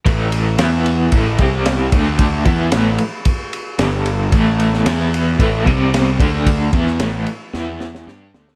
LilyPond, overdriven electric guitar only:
\new Staff \with { instrumentName = "Overdriven electric guitar" } { \clef bass \time 4/4 \key a \minor \tempo 4 = 112 <a, e a>4 <e b e'>4 <a, e a>8 <c g c'>4 <d a d'>8~ | <d a d'>8 <e b e'>8 <a, e a>8 r4. <g, d g>4 | <a, e a>4 <e b e'>4 <a, e a>8 <c g c'>4 <d a d'>8~ | <d a d'>8 <e b e'>8 <a, e a>8 r8 <e b e'>4 <g d' g'>8 <d a d'>8 | }